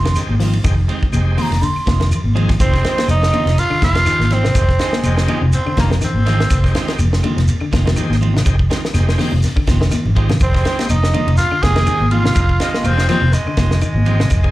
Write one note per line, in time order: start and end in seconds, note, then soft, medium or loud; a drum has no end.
0.00 0.13 F1 medium
0.00 0.16 C6 loud
0.05 0.21 D#3 medium
0.05 0.20 G#3 soft
0.05 0.19 C4 soft
0.05 0.09 D#4 medium
0.05 0.19 F4 soft
0.05 0.10 G4 medium
0.05 snare medium
0.05 ride bell medium
0.15 0.35 G#3 medium
0.15 0.35 C4 medium
0.15 0.36 D#4 medium
0.15 0.35 G4 medium
0.15 snare soft
0.15 ride bell medium
0.15 claves medium
0.15 shekere loud
0.29 0.60 G#1 medium
0.29 high conga medium
0.40 0.56 D#3 medium
0.40 0.56 F3 medium
0.40 0.57 G#3 medium
0.40 0.57 C4 medium
0.40 0.57 F4 medium
0.40 snare soft
0.40 open hi-hat medium
0.40 low conga medium
0.40 shekere soft
0.53 ride bell medium
0.64 0.86 F1 loud
0.64 0.81 D#3 loud
0.64 0.75 G#3 loud
0.64 0.75 C4 medium
0.64 0.75 D#4 medium
0.64 0.75 G4 loud
0.64 kick loud
0.64 ride bell medium
0.64 claves medium
0.64 shekere loud
0.88 1.05 D#3 medium
0.88 0.99 G#3 medium
0.88 1.05 G#3 medium
0.88 0.99 C4 medium
0.88 1.05 C4 medium
0.88 0.99 D#4 medium
0.88 0.99 G4 medium
0.88 muted clean electric guitar stroke medium
0.88 ride bell soft
0.88 shekere soft
1.03 kick medium
1.12 1.34 F1 loud
1.12 1.51 G#3 medium
1.12 1.52 C4 medium
1.12 1.52 D#4 medium
1.12 1.52 G4 loud
1.12 ride bell medium
1.12 high conga loud
1.12 low conga medium
1.12 claves medium
1.12 shekere medium
1.37 1.53 D#3 medium
1.37 1.54 D#3 medium
1.37 1.54 G#3 medium
1.37 1.54 C4 medium
1.37 1.54 F4 medium
1.37 1.43 C6 medium
1.37 open hi-hat medium
1.37 high conga medium
1.37 low conga medium
1.37 claves medium
1.37 shekere soft
1.42 1.65 A#5 medium
1.50 1.60 F1 medium
1.50 snare soft
1.50 ride bell soft
1.62 1.79 D3 medium
1.62 2.12 C6 medium
1.62 ride bell medium
1.62 shekere medium
1.76 muted fingered electric bass stroke soft
1.76 claves medium
1.86 2.08 F1 medium
1.86 2.00 D#3 medium
1.86 2.00 G#3 medium
1.86 1.99 F4 medium
1.86 muted clean electric guitar stroke medium
1.86 kick medium
1.86 snare medium
1.86 ride bell medium
1.86 high conga loud
1.86 shekere soft
2.00 2.17 D#3 medium
2.00 2.14 G#3 soft
2.00 2.14 C4 soft
2.00 2.14 F4 medium
2.00 snare medium
2.00 ride bell medium
2.11 ride bell medium
2.11 low conga medium
2.11 claves medium
2.11 shekere medium
2.24 2.55 G#1 loud
2.24 high conga medium
2.35 2.51 D#3 medium
2.35 2.52 F3 medium
2.35 2.50 G#3 medium
2.35 2.51 G#3 medium
2.35 2.51 C4 medium
2.35 2.52 C4 medium
2.35 2.51 D#4 medium
2.35 2.52 F4 medium
2.35 2.51 G#4 loud
2.35 ride bell medium
2.35 low conga medium
2.35 shekere soft
2.49 kick medium
2.49 snare soft
2.49 ride bell medium
2.60 2.81 F1 loud
2.60 2.76 D#3 medium
2.60 2.76 G#3 medium
2.60 2.76 C4 medium
2.60 3.06 C4 loud
2.60 2.76 F4 medium
2.60 3.06 C5 medium
2.60 kick loud
2.60 ride bell medium
2.60 claves medium
2.60 shekere loud
2.74 3.10 G#3 medium
2.74 3.10 C4 medium
2.74 3.10 D#4 medium
2.74 3.10 G4 medium
2.74 kick medium
2.74 snare soft
2.84 3.00 D#3 medium
2.84 3.00 G#3 medium
2.84 3.01 C4 medium
2.84 3.01 F4 medium
2.84 snare medium
2.84 ride bell medium
2.84 shekere soft
2.98 snare medium
2.98 ride bell medium
2.98 high conga medium
3.08 3.30 F1 loud
3.08 3.61 D#4 medium
3.08 3.60 D#5 medium
3.08 ride bell medium
3.08 high conga loud
3.08 low conga medium
3.08 claves medium
3.08 shekere medium
3.22 3.34 G#3 soft
3.22 3.32 C4 soft
3.22 3.33 F4 medium
3.22 snare medium
3.33 3.42 D3 medium
3.33 3.49 D#3 medium
3.33 3.49 C4 medium
3.33 3.50 F4 medium
3.33 ride bell medium
3.33 high conga medium
3.33 low conga medium
3.33 claves medium
3.33 shekere soft
3.46 3.56 F1 loud
3.46 3.63 C3 medium
3.46 snare soft
3.46 ride bell medium
3.58 3.83 F4 loud
3.58 3.82 F5 loud
3.58 snare soft
3.58 ride bell medium
3.58 shekere medium
3.70 3.87 D3 medium
3.70 muted fingered electric bass stroke soft
3.70 claves medium
3.82 4.03 F1 medium
3.82 3.98 D#3 medium
3.82 3.98 G#3 medium
3.82 3.98 C4 medium
3.82 4.35 F4 loud
3.82 4.34 F5 loud
3.82 muted clean electric guitar stroke medium
3.82 kick medium
3.82 snare medium
3.82 ride bell medium
3.82 high conga medium
3.82 shekere soft
3.95 4.00 D#4 medium
3.95 4.00 G4 medium
3.95 muted clean electric guitar stroke medium
3.95 snare medium
3.95 ride bell medium
4.06 4.23 D#3 medium
4.06 4.26 G#3 medium
4.06 4.26 C4 medium
4.06 4.26 D#4 medium
4.06 4.26 G4 loud
4.06 snare soft
4.06 ride bell medium
4.06 claves medium
4.06 shekere medium
4.20 4.51 G#1 loud
4.20 snare soft
4.20 high conga medium
4.30 4.46 D#3 medium
4.30 4.47 G#3 medium
4.30 4.47 C4 medium
4.30 5.30 C4 medium
4.30 4.47 F4 medium
4.30 5.30 C5 medium
4.30 snare soft
4.30 ride bell medium
4.30 low conga medium
4.30 shekere soft
4.44 4.51 C3 medium
4.44 snare medium
4.55 4.77 F1 loud
4.55 4.65 G#3 medium
4.55 4.66 C4 medium
4.55 4.66 D#4 medium
4.55 4.66 G4 loud
4.55 kick loud
4.55 snare soft
4.55 ride bell medium
4.55 claves medium
4.55 shekere loud
4.69 kick medium
4.69 snare soft
4.79 4.95 D#3 medium
4.79 4.90 G#3 medium
4.79 4.95 G#3 medium
4.79 5.03 G#3 medium
4.79 4.90 C4 medium
4.79 4.95 C4 medium
4.79 4.90 D#4 medium
4.79 4.90 F4 medium
4.79 4.96 F4 medium
4.79 snare medium
4.79 ride bell medium
4.79 shekere soft
4.93 snare medium
4.93 high conga medium
5.03 5.25 F1 loud
5.03 5.42 G#3 loud
5.03 5.28 G#3 medium
5.03 5.43 C4 medium
5.03 5.43 D#4 medium
5.03 5.43 G4 loud
5.03 ride bell medium
5.03 high conga loud
5.03 low conga medium
5.03 claves medium
5.03 shekere medium
5.17 5.28 G#3 soft
5.17 5.28 C4 soft
5.17 5.28 F4 medium
5.17 snare medium
5.28 5.37 D3 medium
5.28 5.44 D#3 medium
5.28 5.39 G#3 loud
5.28 5.45 G#3 medium
5.28 5.45 C4 medium
5.28 5.45 F4 medium
5.28 ride bell medium
5.28 high conga medium
5.28 low conga medium
5.28 claves medium
5.28 shekere soft
5.42 5.51 F1 medium
5.42 5.59 C3 medium
5.52 5.76 C4 loud
5.52 ride bell medium
5.52 shekere medium
5.66 5.83 D3 medium
5.66 muted fingered electric bass stroke soft
5.66 claves medium
5.77 5.99 F1 medium
5.77 5.93 D#3 medium
5.77 5.93 G#3 medium
5.77 5.90 A#3 medium
5.77 5.93 C4 medium
5.77 5.93 F4 medium
5.77 kick medium
5.77 snare medium
5.77 ride bell medium
5.77 high conga loud
5.77 shekere soft
5.90 5.98 C3 medium
5.90 snare medium
6.01 6.18 D#3 medium
6.01 6.97 C4 loud
6.01 snare soft
6.01 ride bell medium
6.01 low conga medium
6.01 claves medium
6.01 shekere loud
6.14 6.46 G#1 loud
6.14 high conga medium
6.26 6.42 D#3 medium
6.26 6.41 G#3 medium
6.26 6.42 G#3 medium
6.26 6.41 C4 medium
6.26 6.42 C4 medium
6.26 6.41 D#4 medium
6.26 6.42 F4 medium
6.26 6.41 G4 loud
6.26 snare soft
6.26 ride bell medium
6.26 high conga medium
6.26 low conga medium
6.26 shekere soft
6.40 snare medium
6.50 6.72 F1 loud
6.50 kick loud
6.50 snare soft
6.50 ride bell medium
6.50 claves medium
6.50 shekere loud
6.64 7.00 G#3 loud
6.64 7.00 C4 medium
6.64 7.00 D#4 loud
6.64 7.00 G4 loud
6.64 kick medium
6.64 snare soft
6.75 6.91 D#3 medium
6.75 6.91 G#3 medium
6.75 6.91 C4 medium
6.75 6.91 F4 medium
6.75 snare medium
6.75 ride bell medium
6.75 shekere soft
6.88 snare medium
6.88 ride bell medium
6.99 7.20 F1 loud
6.99 ride bell medium
6.99 high conga loud
6.99 low conga medium
6.99 claves medium
6.99 shekere medium
7.13 7.23 G#3 medium
7.13 7.23 C4 medium
7.13 7.24 F4 medium
7.13 snare medium
7.23 7.33 D3 medium
7.23 7.39 D#3 medium
7.23 7.40 G#3 medium
7.23 7.40 C4 medium
7.23 7.40 F4 medium
7.23 ride bell medium
7.23 high conga medium
7.23 low conga medium
7.23 claves medium
7.23 shekere soft
7.37 7.47 F1 loud
7.37 7.53 C3 medium
7.37 snare soft
7.37 ride bell medium
7.48 ride bell medium
7.48 shekere medium
7.60 7.78 D3 medium
7.60 muted fingered electric bass stroke soft
7.60 claves medium
7.71 7.94 F1 medium
7.71 7.86 D#3 medium
7.71 7.86 G#3 medium
7.71 7.85 C4 medium
7.71 7.84 F4 medium
7.71 kick medium
7.71 snare medium
7.71 ride bell medium
7.71 high conga loud
7.71 shekere soft
7.86 7.93 D#3 medium
7.86 8.00 G#3 soft
7.86 8.00 C4 medium
7.86 7.90 D#4 medium
7.86 8.00 F4 medium
7.86 7.91 G4 loud
7.86 snare medium
7.86 ride bell medium
7.86 high conga medium
7.96 8.13 D#3 medium
7.96 8.16 G#3 loud
7.96 8.17 C4 loud
7.96 8.16 D#4 medium
7.96 8.17 G4 loud
7.96 ride bell medium
7.96 low conga medium
7.96 claves medium
7.96 shekere medium
8.10 8.41 G#1 loud
8.10 snare soft
8.10 high conga medium
8.21 8.37 D#3 medium
8.21 8.37 G#3 medium
8.21 8.37 C4 medium
8.21 8.37 F4 medium
8.21 ride bell medium
8.21 low conga medium
8.21 shekere soft
8.34 8.42 C3 medium
8.34 snare medium
8.45 8.67 F1 loud
8.45 8.56 G#3 loud
8.45 8.56 C4 loud
8.45 8.56 D#4 loud
8.45 8.57 G4 loud
8.45 kick medium
8.45 ride bell medium
8.45 claves medium
8.45 shekere loud
8.59 kick medium
8.70 8.86 D#3 medium
8.70 8.80 G#3 medium
8.70 8.86 G#3 medium
8.70 8.80 C4 medium
8.70 8.86 C4 medium
8.70 8.81 D#4 medium
8.70 8.86 F4 medium
8.70 8.81 G4 loud
8.70 snare medium
8.70 ride bell medium
8.70 shekere soft
8.85 snare medium
8.94 9.16 F1 loud
8.94 9.32 G#3 loud
8.94 9.33 C4 medium
8.94 9.33 D#4 loud
8.94 9.33 G4 loud
8.94 snare soft
8.94 ride bell medium
8.94 high conga loud
8.94 claves medium
8.94 shekere medium
9.07 9.17 G#3 soft
9.07 9.18 C4 medium
9.07 9.18 F4 medium
9.07 snare medium
9.18 9.28 D3 medium
9.18 9.34 D#3 medium
9.18 9.34 G#3 medium
9.18 9.35 C4 medium
9.18 9.35 F4 medium
9.18 snare soft
9.18 open hi-hat medium
9.18 high conga medium
9.18 low conga medium
9.18 claves medium
9.18 shekere soft
9.32 9.42 F1 medium
9.32 9.48 C3 medium
9.43 snare soft
9.43 ride bell medium
9.43 shekere medium
9.56 9.73 D3 medium
9.56 muted fingered electric bass stroke soft
9.56 kick medium
9.56 claves medium
9.67 9.89 F1 medium
9.67 9.81 D#3 medium
9.67 9.80 G#3 medium
9.67 9.79 C4 medium
9.67 9.79 F4 medium
9.67 kick medium
9.67 snare medium
9.67 ride bell medium
9.67 high conga medium
9.67 shekere soft
9.80 9.88 D#3 medium
9.80 9.95 G#3 soft
9.80 9.95 C4 medium
9.80 9.94 F4 medium
9.80 snare medium
9.91 10.08 D#3 medium
9.91 snare soft
9.91 ride bell medium
9.91 high conga medium
9.91 claves medium
9.91 shekere medium
10.05 10.36 G#1 loud
10.05 low conga loud
10.15 10.32 D#3 medium
10.15 10.31 G#3 loud
10.15 10.32 G#3 medium
10.15 10.31 C4 medium
10.15 10.32 C4 medium
10.15 10.31 D#4 medium
10.15 10.32 F4 medium
10.15 10.31 G4 loud
10.15 kick medium
10.15 ride bell soft
10.15 shekere soft
10.29 10.37 C3 medium
10.29 snare medium
10.29 low conga loud
10.40 10.62 F1 loud
10.40 10.88 C4 loud
10.40 10.87 C5 medium
10.40 kick loud
10.40 ride bell medium
10.40 claves medium
10.40 shekere loud
10.53 10.90 G#3 medium
10.53 10.90 C4 medium
10.53 10.90 D#4 medium
10.53 10.90 G4 loud
10.53 kick medium
10.53 snare soft
10.64 10.81 D#3 medium
10.64 10.81 G#3 medium
10.64 10.81 C4 medium
10.64 10.81 F4 medium
10.64 snare medium
10.64 ride bell medium
10.64 shekere soft
10.79 snare medium
10.79 ride bell medium
10.79 high conga medium
10.89 11.11 F1 loud
10.89 11.35 D#4 medium
10.89 11.35 D#5 medium
10.89 ride bell medium
10.89 high conga loud
10.89 claves medium
10.89 shekere medium
11.02 11.13 G#3 soft
11.02 11.14 C4 soft
11.02 11.13 F4 medium
11.02 snare medium
11.13 11.23 D3 medium
11.13 11.29 D#3 medium
11.13 11.30 G#3 medium
11.13 11.30 F4 medium
11.13 ride bell medium
11.13 high conga medium
11.13 low conga medium
11.13 claves medium
11.13 shekere soft
11.27 11.37 F1 medium
11.27 11.44 C3 medium
11.27 ride bell medium
11.37 11.64 F4 loud
11.37 11.64 F5 medium
11.37 snare soft
11.37 ride bell medium
11.37 shekere medium
11.51 11.68 D3 medium
11.51 muted fingered electric bass stroke soft
11.51 claves medium
11.62 11.84 F1 medium
11.62 11.76 D#3 medium
11.62 11.76 G#3 medium
11.62 11.76 C4 medium
11.62 11.76 F4 medium
11.62 12.11 G#4 loud
11.62 12.11 G#5 loud
11.62 kick medium
11.62 snare medium
11.62 ride bell medium
11.62 high conga loud
11.62 shekere soft
11.76 11.83 D#3 medium
11.76 11.91 G#3 soft
11.76 11.91 C4 soft
11.76 11.80 D#4 medium
11.76 11.90 F4 soft
11.76 11.81 G4 medium
11.76 snare medium
11.76 ride bell medium
11.76 high conga medium
11.87 12.03 D#3 medium
11.87 12.07 G#3 medium
11.87 12.07 C4 medium
11.87 12.07 D#4 medium
11.87 12.07 G4 medium
11.87 ride bell medium
11.87 claves medium
11.87 shekere loud
12.00 12.31 G#1 loud
12.00 high conga medium
12.11 12.27 D#3 medium
12.11 12.27 G#3 medium
12.11 12.28 C4 medium
12.11 13.05 F4 loud
12.11 12.28 F4 medium
12.11 13.05 F5 medium
12.11 ride bell medium
12.11 high conga medium
12.11 low conga medium
12.11 shekere soft
12.24 12.32 C3 medium
12.24 snare medium
12.35 12.57 F1 loud
12.35 12.46 G#3 medium
12.35 12.46 C4 medium
12.35 12.46 D#4 medium
12.35 12.46 A#4 loud
12.35 kick loud
12.35 ride bell medium
12.35 claves medium
12.35 shekere loud
12.49 kick medium
12.60 12.76 D#3 medium
12.60 12.70 G#3 medium
12.60 12.76 G#3 medium
12.60 12.88 G#3 loud
12.60 12.71 C4 medium
12.60 12.76 C4 medium
12.60 12.71 D#4 medium
12.60 12.76 F4 medium
12.60 12.71 G4 medium
12.60 snare medium
12.60 ride bell medium
12.60 shekere soft
12.74 snare medium
12.74 high conga medium
12.84 13.06 F1 loud
12.84 13.23 G#3 medium
12.84 13.23 C4 medium
12.84 13.08 C4 loud
12.84 13.23 D#4 medium
12.84 13.23 G4 loud
12.84 ride bell medium
12.84 high conga loud
12.84 low conga medium
12.84 claves medium
12.84 shekere medium
12.98 13.08 G#3 soft
12.98 13.08 C4 medium
12.98 13.09 F4 medium
12.98 snare medium
13.08 13.25 D#3 medium
13.08 13.18 F3 medium
13.08 13.25 G#3 medium
13.08 13.35 C4 loud
13.08 13.25 C4 medium
13.08 13.25 F4 medium
13.08 snare soft
13.08 ride bell medium
13.08 high conga medium
13.08 low conga medium
13.08 claves medium
13.08 shekere soft
13.22 13.32 F1 loud
13.22 13.39 C3 medium
13.33 13.81 G#3 medium
13.33 snare soft
13.33 ride bell medium
13.33 shekere medium
13.46 13.64 D3 medium
13.46 muted fingered electric bass stroke soft
13.46 claves medium
13.57 13.79 F1 medium
13.57 13.73 D#3 medium
13.57 13.74 G#3 medium
13.57 13.74 C4 medium
13.57 13.74 F4 medium
13.57 kick medium
13.57 snare medium
13.57 ride bell medium
13.57 high conga loud
13.57 shekere soft
13.71 13.79 D#3 medium
13.71 snare medium
13.81 13.98 D#3 medium
13.81 14.51 G#3 medium
13.81 ride bell medium
13.81 claves medium
13.81 shekere loud
13.95 14.26 G#1 loud
13.95 high conga medium
14.06 14.21 G#3 medium
14.06 14.22 G#3 medium
14.06 14.21 C4 medium
14.06 14.23 C4 medium
14.06 14.21 D#4 medium
14.06 14.23 F4 medium
14.06 14.22 G4 loud
14.06 muted clean electric guitar stroke medium
14.06 ride bell medium
14.06 low conga medium
14.06 shekere soft
14.20 14.28 C3 medium
14.20 snare medium
14.30 14.51 F1 loud
14.30 kick medium
14.30 snare soft
14.30 ride bell medium
14.30 claves medium
14.30 shekere loud
14.43 14.51 G#3 loud
14.43 14.51 C4 medium
14.43 14.51 D#4 medium
14.43 14.51 G#4 loud
14.43 kick medium